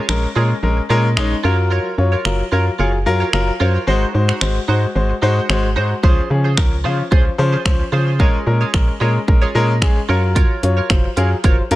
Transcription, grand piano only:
0.09 G#3 C#4 A#4
0.36 G#3 C#4 A#4
0.63 G#3 C#4 A#4
0.90 G#3 C#4 A#4
1.17 G#3 C#4 D#4
1.44 F#3 F4 A#4
1.98 F#3 F4 C#5
2.25 F#3 F4 A#4
2.52 F#3 F4 A#4
2.79 F#3 F4 G#4
3.06 F#3 F4 A#4
3.33 F#3 F4 A#4
3.60 F#3 F4 C5
3.87 G#3 F#4 C5
4.14 G#3 F#4 C5
4.41 G#3 F#4 C5
4.68 G#3 F#4 C5
4.95 G#3 F#4 C5
5.22 G#3 F#4 C5
5.49 G#3 F#4 C5
5.76 G#3 F#4 C5
6.03 F3 C#4 C5
6.30 F3 C#4 G#4
6.57 F3 C#4 A#4
6.85 F3 C#4 F4
7.11 F3 C#4 C5
7.38 F3 C#4 C5
7.65 F3 C#4 C5
7.93 F3 C#4 C5
8.20 G#3 C#4 A#4
8.46 G#3 C#4 A#4
8.74 G#3 C#4 A#4
9.01 G#3 C#4 A#4
9.28 G#3 C#4 A#4
9.55 G#3 C#4 A#4
9.82 G#3 C#4 G#4
10.09 F#3 F4 A#4
10.63 F#3 F4 C#5
10.90 F#3 F4 C5
11.17 F#3 F4 G#4
11.44 F#3 F4 C5
11.71 F#3 F4 A#4

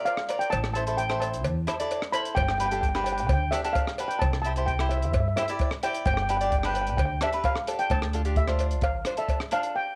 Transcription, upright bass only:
0.53 A1
1.46 E2
2.37 G1
3.30 D2
4.22 C2
5.14 G2
6.06 G1
6.98 D2
7.91 D2
8.82 A1

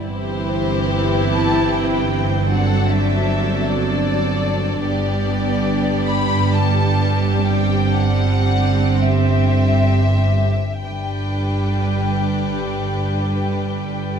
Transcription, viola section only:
0.06 E3 C4
2.52 F#3
4.86 G3 B3
7.47 C4
10.84 G3 D4

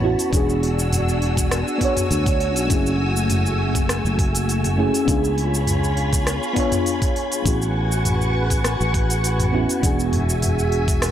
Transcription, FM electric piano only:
0.01 B3 C#4 E4 F#4
0.30 B3 D4
0.34 F#4 G#4
1.78 B3 D4
1.82 F#4 C#5
2.67 A3 C#4
2.71 E4 G#4
4.77 A3 C#4 E4 G#4
5.05 B3 D4
5.09 F4 G#4
6.53 B3 D4
6.58 F4 C#5
7.42 B3 C#4
7.47 E4 F#4
9.52 B3 C#4 E4 F#4
9.80 B3 D4
9.84 F#4 G#4

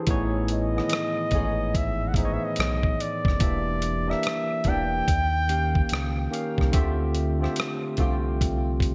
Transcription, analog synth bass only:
0.08 A1
1.33 G#1
2.59 B1
3.26 F#1
3.41 E1
4.66 E1
5.09 D#2
5.92 C#2
6.59 C2
6.75 D2
7.99 C2

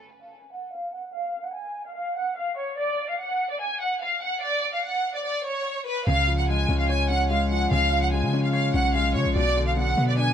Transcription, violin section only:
Already playing: G#5
0.21 F5
0.32 G#5
0.52 F#5
0.73 F5
0.93 F#5
1.14 F5
1.45 F#5
1.55 G#5
1.86 F5
1.96 F5
2.17 F#5
2.37 F5
2.58 C#5
2.78 D5
3.09 F5
3.19 F#5
3.50 D5
3.60 G#5
3.81 F#5
4.02 F5
4.22 F#5
4.43 D5
4.73 F5
4.84 F#5
5.14 D5
5.25 D5
5.45 C#5
5.87 B4
6.07 F5
6.38 F#5
6.48 G#5
6.79 F5
6.89 G#5
7.10 F#5
7.30 F5
7.51 F#5
7.71 F5
8.02 F#5
8.12 G#5
8.43 F5
8.54 F5
8.74 F#5
8.95 F5
9.15 C#5
9.36 D5
9.67 F5
9.77 F#5
10.08 D5
10.18 G#5

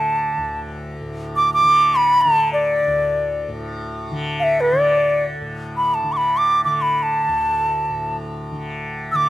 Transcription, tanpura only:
Already playing: D2 A2 D3
0.37 D2
1.01 A2
1.62 D3
2.24 D3
2.86 D2
3.48 A2
4.11 D3
4.72 D3
5.41 A2
6.03 D3
6.65 D3
7.27 D2
7.89 A2
8.51 D3
9.13 D3

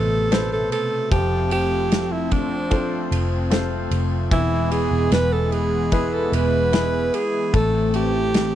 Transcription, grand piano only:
Already playing: A3 A4 B4 C5
0.31 A4 B4 C5
1.11 F3
2.70 F4 A4 C5
3.50 F4 A4 C5
4.31 E3
5.92 E4 G#4 B4
6.73 E4 G#4 B4
7.53 A3

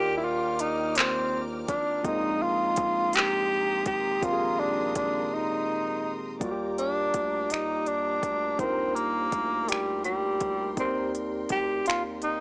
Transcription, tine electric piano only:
Already playing: D#3 A#3 F4 A#4 D5
2.03 A#2 A#3 C4
2.07 G#3 D#4
4.21 A#2 A#3 C4
4.25 D#3 G4
4.33 G#4
6.40 G3 A#3 F4 D5
6.44 F#4
6.51 G4
8.58 A#3 D4 D#4
8.62 F4 A#4
10.76 C4 D#4 G4 D5
10.81 A#4

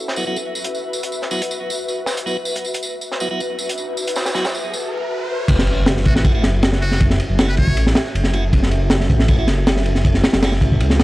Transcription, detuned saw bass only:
5.48 F#1
5.78 F#1
6.06 A1
6.44 F#1
7.30 F#1
7.58 A1
8.15 F#1
8.53 F#1
8.81 F#1
9.10 A1
9.48 F#1
10.33 F#1
10.61 A1
10.81 C#2

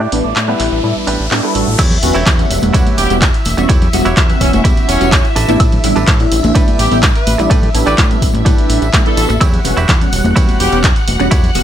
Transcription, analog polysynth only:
0.12 G3 B3 D4 E4
0.48 G3 B3 D4 E4
0.83 G3 B3 D4 E4
1.31 G3 B3 D4 G4
1.43 G3 B3 D4 E4
1.55 G3 B3 D4 F#4
2.02 G3 B3 C#4 F#4
2.39 G3 B3 C#4 F#5
2.74 G3 B3 C#4 F#5
3.10 G3 B3 C#4 F#4
3.58 G3 B3 C#4 F#4
3.93 G3 B3 C#4 F#4
4.29 G3 B3 C#4 F#5
4.64 G3 B3 C#4 F#5
5.00 G3 B3 C#4 F#4
5.48 G3 B3 D4 E4
5.84 G3 B3 D4 E4
6.20 G3 B3 D4 E4
6.55 G3 B3 D4 E4
6.91 G3 B3 D4 E4
7.39 G3 B3 D4 E4
7.74 G3 B3 D4 E4
8.10 G3 B3 D4 E4
8.46 G3 B3 D4 E4
8.93 G3 B3 D4 G4
9.05 G3 B3 D4 E4
9.17 G3 B3 D4 F#4
9.64 G3 B3 C#4 F#4
10.01 G3 B3 C#4 F#5
10.36 G3 B3 C#4 F#5
10.72 G3 B3 C#4 F#4
11.20 G3 B3 C#4 F#4
11.55 G3 B3 C#4 F#4

